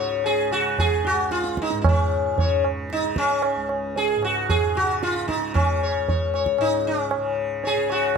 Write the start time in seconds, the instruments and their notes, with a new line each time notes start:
Already playing: tanpura C#2 G#2 C#3
0.00 sitar C#5
0.24 sitar G#4, tabla tin
0.51 tanpura C#3, sitar F#4, tabla na
0.79 sitar G#4, tabla na, tabla ge
1.05 sitar F#4, tabla te
1.11 tanpura C#2
1.31 sitar F4, tabla te
1.44 tabla te
1.57 tabla ke
1.62 sitar D#4
1.70 tanpura G#2, tabla te
1.81 sitar D#4, tabla na, tabla ge
1.89 sitar C#4
2.35 tanpura C#3, tabla tin, tabla ge
2.40 sitar C#5
2.64 tabla na
2.90 sitar D#4, tabla te
2.96 tanpura C#3
3.04 tabla te
3.16 sitar C#4, tabla ke
3.30 tabla te
3.42 tabla na
3.56 tanpura C#2
3.69 tabla na
3.96 sitar G#4, tabla tin
4.16 tanpura G#2
4.22 sitar F#4, tabla na
4.49 sitar G#4, tabla na, tabla ge
4.75 tanpura C#3, sitar F#4, tabla te
5.03 sitar F4, tabla te
5.16 tabla te
5.28 sitar D#4, tabla ke
5.36 tanpura C#3
5.42 tabla te
5.54 sitar C#4, tabla na, tabla ge
5.83 sitar C#5
5.97 tanpura C#2
6.08 sitar C#5, tabla tin, tabla ge
6.34 sitar C#5, tabla na
6.46 tabla ke
6.58 tanpura G#2, sitar D#4, tabla na
6.87 sitar C#4
7.11 tabla na
7.17 tanpura C#3
7.64 sitar G#4 C#5, tabla tin
7.77 tanpura C#3
7.90 sitar F#4 C#5, tabla na